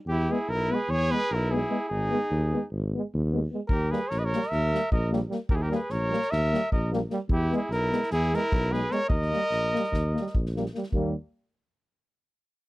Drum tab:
SD |------------------|------------------|--o-o-ooo-o---o-o-|--o-o-ooo-o---o-o-|
BD |------------------|------------------|o-----------o-----|o-----------o-----|

SD |--o-o-ooo-o---o-o-|-oo-ooooo-oo-ooooo|------------------|
BD |o-----------o-----|o-------o---o-----|o-----------------|